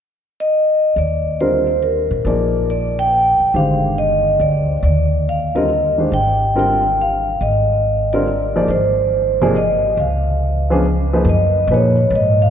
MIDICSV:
0, 0, Header, 1, 5, 480
1, 0, Start_track
1, 0, Key_signature, -3, "major"
1, 0, Tempo, 428878
1, 1086, Time_signature, 3, 2, 24, 8
1, 13990, End_track
2, 0, Start_track
2, 0, Title_t, "Vibraphone"
2, 0, Program_c, 0, 11
2, 451, Note_on_c, 0, 75, 84
2, 1046, Note_off_c, 0, 75, 0
2, 1099, Note_on_c, 0, 74, 75
2, 1573, Note_on_c, 0, 72, 77
2, 1588, Note_off_c, 0, 74, 0
2, 2043, Note_on_c, 0, 70, 73
2, 2066, Note_off_c, 0, 72, 0
2, 2527, Note_off_c, 0, 70, 0
2, 2540, Note_on_c, 0, 70, 75
2, 3022, Note_on_c, 0, 74, 83
2, 3030, Note_off_c, 0, 70, 0
2, 3344, Note_off_c, 0, 74, 0
2, 3347, Note_on_c, 0, 79, 88
2, 3938, Note_off_c, 0, 79, 0
2, 3988, Note_on_c, 0, 77, 83
2, 4428, Note_off_c, 0, 77, 0
2, 4458, Note_on_c, 0, 75, 86
2, 4938, Note_on_c, 0, 74, 77
2, 4951, Note_off_c, 0, 75, 0
2, 5408, Note_off_c, 0, 74, 0
2, 5421, Note_on_c, 0, 74, 80
2, 5913, Note_off_c, 0, 74, 0
2, 5921, Note_on_c, 0, 77, 84
2, 6221, Note_on_c, 0, 75, 77
2, 6235, Note_off_c, 0, 77, 0
2, 6664, Note_off_c, 0, 75, 0
2, 6867, Note_on_c, 0, 79, 87
2, 7356, Note_off_c, 0, 79, 0
2, 7377, Note_on_c, 0, 79, 84
2, 7851, Note_off_c, 0, 79, 0
2, 7851, Note_on_c, 0, 77, 76
2, 8303, Note_on_c, 0, 75, 76
2, 8327, Note_off_c, 0, 77, 0
2, 9099, Note_on_c, 0, 74, 79
2, 9120, Note_off_c, 0, 75, 0
2, 9542, Note_off_c, 0, 74, 0
2, 9745, Note_on_c, 0, 72, 72
2, 10540, Note_on_c, 0, 74, 71
2, 10560, Note_off_c, 0, 72, 0
2, 10703, Note_off_c, 0, 74, 0
2, 10707, Note_on_c, 0, 75, 78
2, 11188, Note_on_c, 0, 77, 66
2, 11194, Note_off_c, 0, 75, 0
2, 12094, Note_off_c, 0, 77, 0
2, 12639, Note_on_c, 0, 75, 78
2, 13116, Note_off_c, 0, 75, 0
2, 13140, Note_on_c, 0, 73, 77
2, 13604, Note_on_c, 0, 75, 81
2, 13605, Note_off_c, 0, 73, 0
2, 13880, Note_off_c, 0, 75, 0
2, 13902, Note_on_c, 0, 77, 79
2, 13990, Note_off_c, 0, 77, 0
2, 13990, End_track
3, 0, Start_track
3, 0, Title_t, "Grand piano"
3, 0, Program_c, 1, 0
3, 1571, Note_on_c, 1, 60, 47
3, 1573, Note_on_c, 1, 55, 49
3, 1574, Note_on_c, 1, 50, 52
3, 1577, Note_on_c, 1, 65, 47
3, 1580, Note_on_c, 1, 70, 59
3, 1855, Note_off_c, 1, 60, 0
3, 1856, Note_off_c, 1, 55, 0
3, 1857, Note_off_c, 1, 50, 0
3, 1858, Note_off_c, 1, 65, 0
3, 1860, Note_off_c, 1, 70, 0
3, 2532, Note_on_c, 1, 53, 44
3, 2537, Note_on_c, 1, 58, 45
3, 2539, Note_on_c, 1, 63, 42
3, 2539, Note_on_c, 1, 74, 51
3, 2541, Note_on_c, 1, 68, 43
3, 3876, Note_off_c, 1, 53, 0
3, 3878, Note_off_c, 1, 58, 0
3, 3880, Note_off_c, 1, 63, 0
3, 3880, Note_off_c, 1, 68, 0
3, 3880, Note_off_c, 1, 74, 0
3, 3967, Note_on_c, 1, 51, 44
3, 3975, Note_on_c, 1, 56, 40
3, 3977, Note_on_c, 1, 50, 44
3, 3980, Note_on_c, 1, 67, 40
3, 3980, Note_on_c, 1, 72, 50
3, 5315, Note_off_c, 1, 51, 0
3, 5318, Note_off_c, 1, 56, 0
3, 5319, Note_off_c, 1, 50, 0
3, 5320, Note_off_c, 1, 72, 0
3, 5321, Note_off_c, 1, 67, 0
3, 6210, Note_on_c, 1, 60, 48
3, 6211, Note_on_c, 1, 50, 60
3, 6211, Note_on_c, 1, 55, 51
3, 6217, Note_on_c, 1, 70, 61
3, 6220, Note_on_c, 1, 65, 51
3, 6358, Note_off_c, 1, 50, 0
3, 6358, Note_off_c, 1, 55, 0
3, 6358, Note_off_c, 1, 60, 0
3, 6362, Note_off_c, 1, 70, 0
3, 6363, Note_off_c, 1, 65, 0
3, 6693, Note_on_c, 1, 51, 47
3, 6696, Note_on_c, 1, 56, 45
3, 6697, Note_on_c, 1, 62, 41
3, 6707, Note_on_c, 1, 67, 42
3, 6712, Note_on_c, 1, 72, 50
3, 6840, Note_off_c, 1, 51, 0
3, 6841, Note_off_c, 1, 56, 0
3, 6842, Note_off_c, 1, 62, 0
3, 6847, Note_off_c, 1, 67, 0
3, 6849, Note_off_c, 1, 72, 0
3, 7335, Note_on_c, 1, 50, 58
3, 7336, Note_on_c, 1, 55, 51
3, 7338, Note_on_c, 1, 60, 52
3, 7339, Note_on_c, 1, 65, 52
3, 7345, Note_on_c, 1, 70, 62
3, 7621, Note_off_c, 1, 50, 0
3, 7622, Note_off_c, 1, 55, 0
3, 7622, Note_off_c, 1, 60, 0
3, 7623, Note_off_c, 1, 65, 0
3, 7626, Note_off_c, 1, 70, 0
3, 9101, Note_on_c, 1, 55, 54
3, 9103, Note_on_c, 1, 50, 61
3, 9107, Note_on_c, 1, 60, 52
3, 9109, Note_on_c, 1, 65, 51
3, 9115, Note_on_c, 1, 70, 62
3, 9244, Note_off_c, 1, 55, 0
3, 9245, Note_off_c, 1, 50, 0
3, 9247, Note_off_c, 1, 60, 0
3, 9248, Note_off_c, 1, 65, 0
3, 9251, Note_off_c, 1, 70, 0
3, 9577, Note_on_c, 1, 53, 59
3, 9579, Note_on_c, 1, 58, 57
3, 9579, Note_on_c, 1, 63, 57
3, 9586, Note_on_c, 1, 68, 54
3, 9586, Note_on_c, 1, 74, 66
3, 9721, Note_off_c, 1, 53, 0
3, 9722, Note_off_c, 1, 58, 0
3, 9722, Note_off_c, 1, 63, 0
3, 9726, Note_off_c, 1, 68, 0
3, 9726, Note_off_c, 1, 74, 0
3, 10537, Note_on_c, 1, 48, 63
3, 10538, Note_on_c, 1, 58, 66
3, 10539, Note_on_c, 1, 53, 62
3, 10543, Note_on_c, 1, 63, 61
3, 10547, Note_on_c, 1, 68, 77
3, 10681, Note_off_c, 1, 48, 0
3, 10681, Note_off_c, 1, 58, 0
3, 10682, Note_off_c, 1, 53, 0
3, 10683, Note_off_c, 1, 63, 0
3, 10686, Note_off_c, 1, 68, 0
3, 11979, Note_on_c, 1, 53, 63
3, 11984, Note_on_c, 1, 61, 58
3, 11986, Note_on_c, 1, 59, 60
3, 11987, Note_on_c, 1, 62, 61
3, 11992, Note_on_c, 1, 68, 73
3, 12120, Note_off_c, 1, 53, 0
3, 12122, Note_off_c, 1, 61, 0
3, 12123, Note_off_c, 1, 59, 0
3, 12124, Note_off_c, 1, 62, 0
3, 12126, Note_off_c, 1, 68, 0
3, 12460, Note_on_c, 1, 53, 60
3, 12463, Note_on_c, 1, 63, 55
3, 12467, Note_on_c, 1, 58, 54
3, 12467, Note_on_c, 1, 68, 56
3, 12467, Note_on_c, 1, 71, 62
3, 12600, Note_off_c, 1, 53, 0
3, 12601, Note_off_c, 1, 63, 0
3, 12603, Note_off_c, 1, 58, 0
3, 12603, Note_off_c, 1, 68, 0
3, 12603, Note_off_c, 1, 71, 0
3, 13101, Note_on_c, 1, 58, 46
3, 13103, Note_on_c, 1, 53, 49
3, 13107, Note_on_c, 1, 63, 48
3, 13110, Note_on_c, 1, 68, 48
3, 13110, Note_on_c, 1, 71, 59
3, 13379, Note_off_c, 1, 58, 0
3, 13380, Note_off_c, 1, 53, 0
3, 13381, Note_off_c, 1, 63, 0
3, 13383, Note_off_c, 1, 68, 0
3, 13383, Note_off_c, 1, 71, 0
3, 13990, End_track
4, 0, Start_track
4, 0, Title_t, "Upright bass"
4, 0, Program_c, 2, 32
4, 1076, Note_on_c, 2, 39, 70
4, 2317, Note_off_c, 2, 39, 0
4, 2357, Note_on_c, 2, 46, 64
4, 2507, Note_off_c, 2, 46, 0
4, 2514, Note_on_c, 2, 34, 73
4, 3757, Note_off_c, 2, 34, 0
4, 3962, Note_on_c, 2, 31, 72
4, 4884, Note_off_c, 2, 31, 0
4, 4920, Note_on_c, 2, 38, 70
4, 5373, Note_off_c, 2, 38, 0
4, 5402, Note_on_c, 2, 39, 71
4, 6805, Note_off_c, 2, 39, 0
4, 6846, Note_on_c, 2, 32, 70
4, 8246, Note_off_c, 2, 32, 0
4, 8291, Note_on_c, 2, 32, 73
4, 9688, Note_off_c, 2, 32, 0
4, 9716, Note_on_c, 2, 32, 73
4, 11118, Note_off_c, 2, 32, 0
4, 11161, Note_on_c, 2, 37, 73
4, 12558, Note_off_c, 2, 37, 0
4, 12585, Note_on_c, 2, 42, 77
4, 13061, Note_off_c, 2, 42, 0
4, 13066, Note_on_c, 2, 46, 86
4, 13540, Note_off_c, 2, 46, 0
4, 13547, Note_on_c, 2, 44, 77
4, 13990, Note_off_c, 2, 44, 0
4, 13990, End_track
5, 0, Start_track
5, 0, Title_t, "Muted upright bass strokes"
5, 3801, Note_on_c, 9, 29, 37
5, 3913, Note_off_c, 9, 29, 0
5, 13990, End_track
0, 0, End_of_file